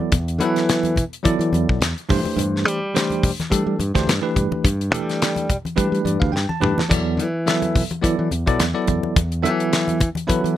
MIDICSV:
0, 0, Header, 1, 5, 480
1, 0, Start_track
1, 0, Key_signature, 1, "minor"
1, 0, Tempo, 565504
1, 98, Time_signature, 4, 2, 24, 8
1, 8972, End_track
2, 0, Start_track
2, 0, Title_t, "Tine electric piano"
2, 0, Program_c, 0, 4
2, 0, Note_on_c, 0, 54, 76
2, 0, Note_on_c, 0, 59, 75
2, 0, Note_on_c, 0, 64, 68
2, 0, Note_on_c, 0, 69, 64
2, 0, Note_on_c, 0, 74, 87
2, 117, Note_off_c, 0, 54, 0
2, 117, Note_off_c, 0, 59, 0
2, 120, Note_off_c, 0, 64, 0
2, 120, Note_off_c, 0, 69, 0
2, 123, Note_off_c, 0, 74, 0
2, 339, Note_on_c, 0, 59, 83
2, 341, Note_on_c, 0, 54, 85
2, 341, Note_on_c, 0, 64, 76
2, 348, Note_on_c, 0, 69, 77
2, 351, Note_on_c, 0, 71, 91
2, 796, Note_off_c, 0, 59, 0
2, 797, Note_off_c, 0, 54, 0
2, 797, Note_off_c, 0, 64, 0
2, 800, Note_off_c, 0, 69, 0
2, 802, Note_off_c, 0, 71, 0
2, 1046, Note_on_c, 0, 54, 88
2, 1050, Note_on_c, 0, 59, 76
2, 1051, Note_on_c, 0, 64, 75
2, 1056, Note_on_c, 0, 69, 77
2, 1060, Note_on_c, 0, 74, 90
2, 1509, Note_off_c, 0, 54, 0
2, 1511, Note_off_c, 0, 59, 0
2, 1512, Note_off_c, 0, 64, 0
2, 1514, Note_off_c, 0, 69, 0
2, 1516, Note_off_c, 0, 74, 0
2, 1771, Note_on_c, 0, 52, 86
2, 1773, Note_on_c, 0, 62, 66
2, 1776, Note_on_c, 0, 57, 80
2, 1777, Note_on_c, 0, 67, 69
2, 1782, Note_on_c, 0, 72, 87
2, 2360, Note_off_c, 0, 52, 0
2, 2361, Note_off_c, 0, 62, 0
2, 2362, Note_off_c, 0, 57, 0
2, 2363, Note_off_c, 0, 67, 0
2, 2365, Note_off_c, 0, 72, 0
2, 2494, Note_on_c, 0, 52, 66
2, 2499, Note_on_c, 0, 57, 67
2, 2501, Note_on_c, 0, 62, 64
2, 2503, Note_on_c, 0, 67, 65
2, 2506, Note_on_c, 0, 72, 83
2, 2805, Note_off_c, 0, 52, 0
2, 2808, Note_off_c, 0, 57, 0
2, 2809, Note_off_c, 0, 62, 0
2, 2810, Note_off_c, 0, 67, 0
2, 2811, Note_off_c, 0, 72, 0
2, 2972, Note_on_c, 0, 52, 80
2, 2978, Note_on_c, 0, 67, 61
2, 2979, Note_on_c, 0, 62, 70
2, 2980, Note_on_c, 0, 57, 61
2, 2985, Note_on_c, 0, 69, 81
2, 3204, Note_off_c, 0, 52, 0
2, 3207, Note_off_c, 0, 57, 0
2, 3207, Note_off_c, 0, 62, 0
2, 3207, Note_off_c, 0, 67, 0
2, 3210, Note_off_c, 0, 69, 0
2, 3347, Note_on_c, 0, 57, 75
2, 3348, Note_on_c, 0, 52, 79
2, 3350, Note_on_c, 0, 62, 80
2, 3353, Note_on_c, 0, 67, 74
2, 3353, Note_on_c, 0, 72, 88
2, 3491, Note_off_c, 0, 57, 0
2, 3492, Note_off_c, 0, 52, 0
2, 3492, Note_off_c, 0, 62, 0
2, 3494, Note_off_c, 0, 67, 0
2, 3494, Note_off_c, 0, 72, 0
2, 3579, Note_on_c, 0, 52, 83
2, 3583, Note_on_c, 0, 57, 72
2, 3584, Note_on_c, 0, 62, 72
2, 3586, Note_on_c, 0, 67, 64
2, 3588, Note_on_c, 0, 71, 82
2, 3953, Note_off_c, 0, 52, 0
2, 3955, Note_off_c, 0, 57, 0
2, 3956, Note_off_c, 0, 62, 0
2, 3956, Note_off_c, 0, 67, 0
2, 3958, Note_off_c, 0, 71, 0
2, 4167, Note_on_c, 0, 52, 89
2, 4170, Note_on_c, 0, 57, 68
2, 4174, Note_on_c, 0, 62, 72
2, 4174, Note_on_c, 0, 67, 79
2, 4180, Note_on_c, 0, 69, 87
2, 4629, Note_off_c, 0, 52, 0
2, 4631, Note_off_c, 0, 57, 0
2, 4633, Note_off_c, 0, 62, 0
2, 4633, Note_off_c, 0, 67, 0
2, 4636, Note_off_c, 0, 69, 0
2, 4886, Note_on_c, 0, 52, 85
2, 4889, Note_on_c, 0, 57, 68
2, 4892, Note_on_c, 0, 62, 79
2, 4894, Note_on_c, 0, 67, 75
2, 4895, Note_on_c, 0, 71, 91
2, 5134, Note_on_c, 0, 74, 62
2, 5258, Note_off_c, 0, 74, 0
2, 5261, Note_on_c, 0, 77, 69
2, 5349, Note_off_c, 0, 52, 0
2, 5350, Note_off_c, 0, 57, 0
2, 5351, Note_off_c, 0, 62, 0
2, 5353, Note_off_c, 0, 67, 0
2, 5353, Note_off_c, 0, 71, 0
2, 5365, Note_off_c, 0, 77, 0
2, 5365, Note_on_c, 0, 79, 58
2, 5493, Note_off_c, 0, 79, 0
2, 5509, Note_on_c, 0, 81, 69
2, 5606, Note_on_c, 0, 52, 79
2, 5611, Note_on_c, 0, 57, 70
2, 5612, Note_on_c, 0, 62, 68
2, 5612, Note_on_c, 0, 67, 81
2, 5615, Note_on_c, 0, 71, 98
2, 5772, Note_off_c, 0, 52, 0
2, 5774, Note_off_c, 0, 57, 0
2, 5775, Note_off_c, 0, 62, 0
2, 5775, Note_off_c, 0, 67, 0
2, 5776, Note_off_c, 0, 71, 0
2, 5832, Note_off_c, 0, 81, 0
2, 5845, Note_on_c, 0, 54, 77
2, 5849, Note_on_c, 0, 59, 72
2, 5850, Note_on_c, 0, 64, 66
2, 5851, Note_on_c, 0, 69, 69
2, 5856, Note_on_c, 0, 74, 81
2, 6160, Note_off_c, 0, 54, 0
2, 6162, Note_off_c, 0, 59, 0
2, 6163, Note_off_c, 0, 64, 0
2, 6163, Note_off_c, 0, 69, 0
2, 6166, Note_off_c, 0, 74, 0
2, 6332, Note_on_c, 0, 59, 58
2, 6333, Note_on_c, 0, 54, 76
2, 6336, Note_on_c, 0, 64, 64
2, 6340, Note_on_c, 0, 69, 68
2, 6340, Note_on_c, 0, 76, 77
2, 6643, Note_off_c, 0, 59, 0
2, 6644, Note_off_c, 0, 54, 0
2, 6645, Note_off_c, 0, 64, 0
2, 6647, Note_off_c, 0, 69, 0
2, 6647, Note_off_c, 0, 76, 0
2, 6803, Note_on_c, 0, 59, 66
2, 6804, Note_on_c, 0, 54, 77
2, 6810, Note_on_c, 0, 64, 70
2, 6812, Note_on_c, 0, 69, 64
2, 6813, Note_on_c, 0, 74, 83
2, 7038, Note_off_c, 0, 54, 0
2, 7038, Note_off_c, 0, 59, 0
2, 7041, Note_off_c, 0, 64, 0
2, 7042, Note_off_c, 0, 69, 0
2, 7043, Note_off_c, 0, 74, 0
2, 7184, Note_on_c, 0, 54, 85
2, 7189, Note_on_c, 0, 64, 78
2, 7190, Note_on_c, 0, 59, 79
2, 7193, Note_on_c, 0, 74, 98
2, 7194, Note_on_c, 0, 69, 79
2, 7328, Note_off_c, 0, 54, 0
2, 7331, Note_off_c, 0, 59, 0
2, 7331, Note_off_c, 0, 64, 0
2, 7333, Note_off_c, 0, 69, 0
2, 7333, Note_off_c, 0, 74, 0
2, 7417, Note_on_c, 0, 59, 75
2, 7418, Note_on_c, 0, 54, 72
2, 7423, Note_on_c, 0, 69, 73
2, 7424, Note_on_c, 0, 74, 87
2, 7425, Note_on_c, 0, 64, 74
2, 7791, Note_off_c, 0, 54, 0
2, 7791, Note_off_c, 0, 59, 0
2, 7794, Note_off_c, 0, 64, 0
2, 7794, Note_off_c, 0, 69, 0
2, 7794, Note_off_c, 0, 74, 0
2, 7999, Note_on_c, 0, 54, 84
2, 8000, Note_on_c, 0, 59, 75
2, 8004, Note_on_c, 0, 64, 70
2, 8006, Note_on_c, 0, 69, 73
2, 8008, Note_on_c, 0, 76, 93
2, 8464, Note_off_c, 0, 54, 0
2, 8464, Note_off_c, 0, 59, 0
2, 8466, Note_off_c, 0, 64, 0
2, 8467, Note_off_c, 0, 69, 0
2, 8468, Note_off_c, 0, 76, 0
2, 8718, Note_on_c, 0, 54, 88
2, 8720, Note_on_c, 0, 59, 74
2, 8723, Note_on_c, 0, 64, 81
2, 8728, Note_on_c, 0, 69, 76
2, 8731, Note_on_c, 0, 71, 86
2, 8972, Note_off_c, 0, 54, 0
2, 8972, Note_off_c, 0, 59, 0
2, 8972, Note_off_c, 0, 64, 0
2, 8972, Note_off_c, 0, 69, 0
2, 8972, Note_off_c, 0, 71, 0
2, 8972, End_track
3, 0, Start_track
3, 0, Title_t, "Fingered electric bass"
3, 0, Program_c, 1, 33
3, 102, Note_on_c, 1, 40, 90
3, 326, Note_on_c, 1, 52, 84
3, 339, Note_off_c, 1, 40, 0
3, 876, Note_off_c, 1, 52, 0
3, 1064, Note_on_c, 1, 52, 86
3, 1161, Note_off_c, 1, 52, 0
3, 1181, Note_on_c, 1, 52, 84
3, 1266, Note_off_c, 1, 52, 0
3, 1295, Note_on_c, 1, 40, 87
3, 1396, Note_off_c, 1, 40, 0
3, 1434, Note_on_c, 1, 35, 77
3, 1514, Note_off_c, 1, 35, 0
3, 1533, Note_on_c, 1, 40, 84
3, 1635, Note_off_c, 1, 40, 0
3, 1784, Note_on_c, 1, 43, 80
3, 1882, Note_off_c, 1, 43, 0
3, 2007, Note_on_c, 1, 43, 96
3, 2252, Note_off_c, 1, 43, 0
3, 2252, Note_on_c, 1, 55, 92
3, 2799, Note_off_c, 1, 55, 0
3, 2983, Note_on_c, 1, 55, 92
3, 3081, Note_off_c, 1, 55, 0
3, 3111, Note_on_c, 1, 55, 78
3, 3192, Note_off_c, 1, 55, 0
3, 3220, Note_on_c, 1, 43, 89
3, 3319, Note_off_c, 1, 43, 0
3, 3349, Note_on_c, 1, 38, 80
3, 3431, Note_off_c, 1, 38, 0
3, 3456, Note_on_c, 1, 43, 84
3, 3556, Note_off_c, 1, 43, 0
3, 3701, Note_on_c, 1, 43, 78
3, 3799, Note_off_c, 1, 43, 0
3, 3941, Note_on_c, 1, 43, 93
3, 4175, Note_off_c, 1, 43, 0
3, 4175, Note_on_c, 1, 55, 92
3, 4721, Note_off_c, 1, 55, 0
3, 4899, Note_on_c, 1, 55, 88
3, 4998, Note_off_c, 1, 55, 0
3, 5025, Note_on_c, 1, 55, 84
3, 5108, Note_off_c, 1, 55, 0
3, 5135, Note_on_c, 1, 43, 91
3, 5235, Note_off_c, 1, 43, 0
3, 5275, Note_on_c, 1, 38, 78
3, 5354, Note_off_c, 1, 38, 0
3, 5373, Note_on_c, 1, 43, 89
3, 5474, Note_off_c, 1, 43, 0
3, 5620, Note_on_c, 1, 43, 76
3, 5719, Note_off_c, 1, 43, 0
3, 5859, Note_on_c, 1, 40, 94
3, 6087, Note_on_c, 1, 52, 87
3, 6100, Note_off_c, 1, 40, 0
3, 6635, Note_off_c, 1, 52, 0
3, 6821, Note_on_c, 1, 52, 88
3, 6919, Note_off_c, 1, 52, 0
3, 6950, Note_on_c, 1, 52, 85
3, 7031, Note_off_c, 1, 52, 0
3, 7064, Note_on_c, 1, 40, 90
3, 7160, Note_off_c, 1, 40, 0
3, 7189, Note_on_c, 1, 35, 79
3, 7270, Note_off_c, 1, 35, 0
3, 7301, Note_on_c, 1, 40, 89
3, 7399, Note_off_c, 1, 40, 0
3, 7537, Note_on_c, 1, 40, 83
3, 7636, Note_off_c, 1, 40, 0
3, 7777, Note_on_c, 1, 40, 100
3, 8013, Note_on_c, 1, 52, 102
3, 8026, Note_off_c, 1, 40, 0
3, 8559, Note_off_c, 1, 52, 0
3, 8736, Note_on_c, 1, 52, 86
3, 8835, Note_off_c, 1, 52, 0
3, 8862, Note_on_c, 1, 52, 83
3, 8945, Note_off_c, 1, 52, 0
3, 8972, End_track
4, 0, Start_track
4, 0, Title_t, "Muted fingered electric bass strokes"
4, 1902, Note_on_c, 9, 29, 34
4, 1987, Note_off_c, 9, 29, 0
4, 3830, Note_on_c, 9, 29, 35
4, 3915, Note_off_c, 9, 29, 0
4, 5755, Note_on_c, 9, 29, 34
4, 5840, Note_off_c, 9, 29, 0
4, 7673, Note_on_c, 9, 29, 35
4, 7758, Note_off_c, 9, 29, 0
4, 8972, End_track
5, 0, Start_track
5, 0, Title_t, "Drums"
5, 100, Note_on_c, 9, 42, 80
5, 101, Note_on_c, 9, 64, 62
5, 104, Note_on_c, 9, 36, 104
5, 185, Note_off_c, 9, 42, 0
5, 186, Note_off_c, 9, 64, 0
5, 189, Note_off_c, 9, 36, 0
5, 240, Note_on_c, 9, 42, 41
5, 325, Note_off_c, 9, 42, 0
5, 344, Note_on_c, 9, 42, 59
5, 429, Note_off_c, 9, 42, 0
5, 477, Note_on_c, 9, 42, 37
5, 481, Note_on_c, 9, 38, 32
5, 562, Note_off_c, 9, 42, 0
5, 566, Note_off_c, 9, 38, 0
5, 587, Note_on_c, 9, 42, 70
5, 591, Note_on_c, 9, 38, 90
5, 671, Note_off_c, 9, 42, 0
5, 676, Note_off_c, 9, 38, 0
5, 708, Note_on_c, 9, 63, 52
5, 719, Note_on_c, 9, 42, 36
5, 793, Note_off_c, 9, 63, 0
5, 804, Note_off_c, 9, 42, 0
5, 815, Note_on_c, 9, 64, 68
5, 827, Note_on_c, 9, 36, 76
5, 827, Note_on_c, 9, 42, 64
5, 900, Note_off_c, 9, 64, 0
5, 912, Note_off_c, 9, 36, 0
5, 912, Note_off_c, 9, 42, 0
5, 960, Note_on_c, 9, 42, 35
5, 1045, Note_off_c, 9, 42, 0
5, 1062, Note_on_c, 9, 42, 71
5, 1064, Note_on_c, 9, 36, 83
5, 1147, Note_off_c, 9, 42, 0
5, 1149, Note_off_c, 9, 36, 0
5, 1194, Note_on_c, 9, 42, 35
5, 1279, Note_off_c, 9, 42, 0
5, 1296, Note_on_c, 9, 63, 64
5, 1308, Note_on_c, 9, 42, 49
5, 1381, Note_off_c, 9, 63, 0
5, 1393, Note_off_c, 9, 42, 0
5, 1437, Note_on_c, 9, 36, 81
5, 1522, Note_off_c, 9, 36, 0
5, 1542, Note_on_c, 9, 42, 77
5, 1546, Note_on_c, 9, 38, 104
5, 1627, Note_off_c, 9, 42, 0
5, 1631, Note_off_c, 9, 38, 0
5, 1678, Note_on_c, 9, 42, 29
5, 1763, Note_off_c, 9, 42, 0
5, 1776, Note_on_c, 9, 64, 64
5, 1783, Note_on_c, 9, 46, 70
5, 1785, Note_on_c, 9, 36, 98
5, 1861, Note_off_c, 9, 64, 0
5, 1868, Note_off_c, 9, 46, 0
5, 1870, Note_off_c, 9, 36, 0
5, 1912, Note_on_c, 9, 63, 66
5, 1997, Note_off_c, 9, 63, 0
5, 2022, Note_on_c, 9, 64, 59
5, 2028, Note_on_c, 9, 42, 80
5, 2107, Note_off_c, 9, 64, 0
5, 2112, Note_off_c, 9, 42, 0
5, 2173, Note_on_c, 9, 38, 36
5, 2258, Note_off_c, 9, 38, 0
5, 2275, Note_on_c, 9, 42, 55
5, 2360, Note_off_c, 9, 42, 0
5, 2513, Note_on_c, 9, 42, 68
5, 2518, Note_on_c, 9, 38, 99
5, 2598, Note_off_c, 9, 42, 0
5, 2603, Note_off_c, 9, 38, 0
5, 2635, Note_on_c, 9, 63, 54
5, 2647, Note_on_c, 9, 42, 33
5, 2719, Note_off_c, 9, 63, 0
5, 2732, Note_off_c, 9, 42, 0
5, 2745, Note_on_c, 9, 36, 83
5, 2746, Note_on_c, 9, 64, 72
5, 2749, Note_on_c, 9, 46, 67
5, 2830, Note_off_c, 9, 36, 0
5, 2830, Note_off_c, 9, 64, 0
5, 2834, Note_off_c, 9, 46, 0
5, 2882, Note_on_c, 9, 42, 36
5, 2883, Note_on_c, 9, 63, 63
5, 2887, Note_on_c, 9, 38, 31
5, 2967, Note_off_c, 9, 42, 0
5, 2968, Note_off_c, 9, 63, 0
5, 2971, Note_off_c, 9, 38, 0
5, 2985, Note_on_c, 9, 36, 71
5, 2989, Note_on_c, 9, 42, 76
5, 3070, Note_off_c, 9, 36, 0
5, 3074, Note_off_c, 9, 42, 0
5, 3223, Note_on_c, 9, 63, 54
5, 3229, Note_on_c, 9, 42, 52
5, 3308, Note_off_c, 9, 63, 0
5, 3314, Note_off_c, 9, 42, 0
5, 3356, Note_on_c, 9, 36, 87
5, 3361, Note_on_c, 9, 42, 42
5, 3365, Note_on_c, 9, 38, 34
5, 3441, Note_off_c, 9, 36, 0
5, 3446, Note_off_c, 9, 42, 0
5, 3450, Note_off_c, 9, 38, 0
5, 3471, Note_on_c, 9, 42, 80
5, 3475, Note_on_c, 9, 38, 104
5, 3555, Note_off_c, 9, 42, 0
5, 3560, Note_off_c, 9, 38, 0
5, 3703, Note_on_c, 9, 36, 67
5, 3705, Note_on_c, 9, 64, 61
5, 3706, Note_on_c, 9, 42, 60
5, 3788, Note_off_c, 9, 36, 0
5, 3790, Note_off_c, 9, 64, 0
5, 3791, Note_off_c, 9, 42, 0
5, 3836, Note_on_c, 9, 63, 63
5, 3921, Note_off_c, 9, 63, 0
5, 3943, Note_on_c, 9, 64, 60
5, 3944, Note_on_c, 9, 36, 105
5, 3950, Note_on_c, 9, 42, 85
5, 4027, Note_off_c, 9, 64, 0
5, 4028, Note_off_c, 9, 36, 0
5, 4035, Note_off_c, 9, 42, 0
5, 4084, Note_on_c, 9, 42, 39
5, 4169, Note_off_c, 9, 42, 0
5, 4181, Note_on_c, 9, 64, 56
5, 4196, Note_on_c, 9, 42, 62
5, 4266, Note_off_c, 9, 64, 0
5, 4281, Note_off_c, 9, 42, 0
5, 4324, Note_on_c, 9, 42, 36
5, 4328, Note_on_c, 9, 38, 37
5, 4409, Note_off_c, 9, 42, 0
5, 4413, Note_off_c, 9, 38, 0
5, 4430, Note_on_c, 9, 42, 82
5, 4434, Note_on_c, 9, 38, 101
5, 4515, Note_off_c, 9, 42, 0
5, 4519, Note_off_c, 9, 38, 0
5, 4553, Note_on_c, 9, 63, 54
5, 4561, Note_on_c, 9, 42, 38
5, 4638, Note_off_c, 9, 63, 0
5, 4646, Note_off_c, 9, 42, 0
5, 4665, Note_on_c, 9, 36, 77
5, 4666, Note_on_c, 9, 64, 72
5, 4668, Note_on_c, 9, 42, 62
5, 4750, Note_off_c, 9, 36, 0
5, 4751, Note_off_c, 9, 64, 0
5, 4753, Note_off_c, 9, 42, 0
5, 4797, Note_on_c, 9, 63, 66
5, 4808, Note_on_c, 9, 42, 37
5, 4882, Note_off_c, 9, 63, 0
5, 4892, Note_off_c, 9, 42, 0
5, 4903, Note_on_c, 9, 36, 73
5, 4904, Note_on_c, 9, 42, 70
5, 4988, Note_off_c, 9, 36, 0
5, 4989, Note_off_c, 9, 42, 0
5, 5047, Note_on_c, 9, 42, 33
5, 5132, Note_off_c, 9, 42, 0
5, 5140, Note_on_c, 9, 63, 63
5, 5153, Note_on_c, 9, 42, 52
5, 5225, Note_off_c, 9, 63, 0
5, 5237, Note_off_c, 9, 42, 0
5, 5277, Note_on_c, 9, 36, 86
5, 5362, Note_off_c, 9, 36, 0
5, 5397, Note_on_c, 9, 38, 56
5, 5482, Note_off_c, 9, 38, 0
5, 5512, Note_on_c, 9, 63, 62
5, 5596, Note_off_c, 9, 63, 0
5, 5622, Note_on_c, 9, 64, 70
5, 5632, Note_on_c, 9, 45, 83
5, 5707, Note_off_c, 9, 64, 0
5, 5717, Note_off_c, 9, 45, 0
5, 5754, Note_on_c, 9, 63, 71
5, 5767, Note_on_c, 9, 38, 72
5, 5839, Note_off_c, 9, 63, 0
5, 5851, Note_off_c, 9, 38, 0
5, 5863, Note_on_c, 9, 64, 63
5, 5865, Note_on_c, 9, 36, 109
5, 5868, Note_on_c, 9, 42, 78
5, 5868, Note_on_c, 9, 55, 83
5, 5948, Note_off_c, 9, 64, 0
5, 5950, Note_off_c, 9, 36, 0
5, 5953, Note_off_c, 9, 42, 0
5, 5953, Note_off_c, 9, 55, 0
5, 6107, Note_on_c, 9, 42, 55
5, 6192, Note_off_c, 9, 42, 0
5, 6345, Note_on_c, 9, 42, 69
5, 6349, Note_on_c, 9, 38, 93
5, 6429, Note_off_c, 9, 42, 0
5, 6434, Note_off_c, 9, 38, 0
5, 6470, Note_on_c, 9, 63, 59
5, 6473, Note_on_c, 9, 42, 35
5, 6555, Note_off_c, 9, 63, 0
5, 6558, Note_off_c, 9, 42, 0
5, 6583, Note_on_c, 9, 36, 89
5, 6583, Note_on_c, 9, 64, 73
5, 6586, Note_on_c, 9, 46, 64
5, 6667, Note_off_c, 9, 36, 0
5, 6668, Note_off_c, 9, 64, 0
5, 6671, Note_off_c, 9, 46, 0
5, 6713, Note_on_c, 9, 63, 66
5, 6715, Note_on_c, 9, 42, 32
5, 6798, Note_off_c, 9, 63, 0
5, 6799, Note_off_c, 9, 42, 0
5, 6823, Note_on_c, 9, 36, 72
5, 6827, Note_on_c, 9, 42, 70
5, 6908, Note_off_c, 9, 36, 0
5, 6912, Note_off_c, 9, 42, 0
5, 7057, Note_on_c, 9, 63, 65
5, 7061, Note_on_c, 9, 42, 53
5, 7142, Note_off_c, 9, 63, 0
5, 7146, Note_off_c, 9, 42, 0
5, 7191, Note_on_c, 9, 42, 41
5, 7193, Note_on_c, 9, 36, 83
5, 7276, Note_off_c, 9, 42, 0
5, 7278, Note_off_c, 9, 36, 0
5, 7296, Note_on_c, 9, 42, 78
5, 7300, Note_on_c, 9, 38, 102
5, 7381, Note_off_c, 9, 42, 0
5, 7385, Note_off_c, 9, 38, 0
5, 7533, Note_on_c, 9, 42, 64
5, 7534, Note_on_c, 9, 64, 60
5, 7538, Note_on_c, 9, 36, 66
5, 7618, Note_off_c, 9, 42, 0
5, 7618, Note_off_c, 9, 64, 0
5, 7623, Note_off_c, 9, 36, 0
5, 7668, Note_on_c, 9, 63, 63
5, 7752, Note_off_c, 9, 63, 0
5, 7777, Note_on_c, 9, 64, 63
5, 7779, Note_on_c, 9, 36, 107
5, 7779, Note_on_c, 9, 42, 89
5, 7862, Note_off_c, 9, 64, 0
5, 7863, Note_off_c, 9, 36, 0
5, 7864, Note_off_c, 9, 42, 0
5, 7909, Note_on_c, 9, 42, 41
5, 7994, Note_off_c, 9, 42, 0
5, 8024, Note_on_c, 9, 42, 62
5, 8109, Note_off_c, 9, 42, 0
5, 8150, Note_on_c, 9, 42, 42
5, 8235, Note_off_c, 9, 42, 0
5, 8257, Note_on_c, 9, 42, 77
5, 8261, Note_on_c, 9, 38, 92
5, 8342, Note_off_c, 9, 42, 0
5, 8346, Note_off_c, 9, 38, 0
5, 8385, Note_on_c, 9, 63, 65
5, 8393, Note_on_c, 9, 42, 38
5, 8469, Note_off_c, 9, 63, 0
5, 8477, Note_off_c, 9, 42, 0
5, 8491, Note_on_c, 9, 64, 77
5, 8496, Note_on_c, 9, 42, 62
5, 8497, Note_on_c, 9, 36, 84
5, 8576, Note_off_c, 9, 64, 0
5, 8581, Note_off_c, 9, 42, 0
5, 8582, Note_off_c, 9, 36, 0
5, 8616, Note_on_c, 9, 63, 70
5, 8634, Note_on_c, 9, 42, 38
5, 8701, Note_off_c, 9, 63, 0
5, 8719, Note_off_c, 9, 42, 0
5, 8738, Note_on_c, 9, 42, 77
5, 8739, Note_on_c, 9, 36, 77
5, 8823, Note_off_c, 9, 42, 0
5, 8824, Note_off_c, 9, 36, 0
5, 8875, Note_on_c, 9, 42, 35
5, 8960, Note_off_c, 9, 42, 0
5, 8972, End_track
0, 0, End_of_file